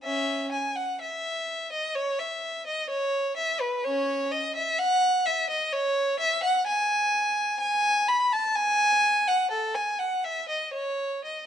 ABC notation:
X:1
M:4/4
L:1/16
Q:1/4=63
K:C#m
V:1 name="Violin"
[Ce]2 g f e3 d c e2 d c2 e B | [Cc]2 d e f2 e d c2 e f g4 | [K:G#phr] g2 b a g3 f A g f e d c2 d |]